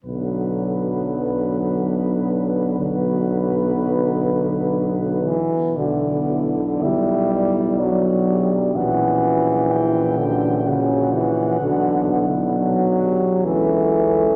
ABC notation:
X:1
M:3/4
L:1/8
Q:1/4=63
K:Bm
V:1 name="Cornet"
B6 | B4- B z | d2 e d d2 | f2 g2 f2- |
f3 z e e |]
V:2 name="French horn section"
B,6 | B,4- B, z | F E E2 F G | F2 E F3 |
F E F G A2 |]
V:3 name="Euphonium"
F,6 | F,4- F, z | B,2 E2 D2 | C2 C2 C2 |
B, z D2 C2 |]
V:4 name="Trombone" clef=bass
D,6 | D,4- D, E, | D,2 G,2 F,2 | E,3 D, C, E, |
D, z F,2 E,2 |]
V:5 name="Tuba" clef=bass
B,,,6 | B,,,4- B,,, z | B,,,6 | ^A,,,6 |
B,,,3 z C,,2 |]